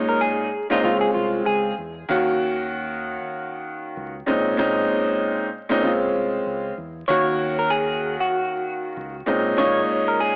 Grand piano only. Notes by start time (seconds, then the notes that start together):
Already playing: A#2 G#3 A#3 C#4 D#4
0.70 A#2 G#3 C4 C#4 D#4
0.83 G#3 C4 C#4 F4
2.09 D#3 A#3 C#4 F#4
4.26 A#2 G#3 C4 C#4 D#4
4.57 A#2 G#3 C4 C#4 D#4
5.69 A#2 G#3 C4 C#4 D#4
5.82 G#3 C4 C#4 F4
7.08 D#3 A#3 C#4 F#4
9.26 A#2 G#3 C4 C#4 D#4
9.57 A#2 G#3 A#3 C#4 D#4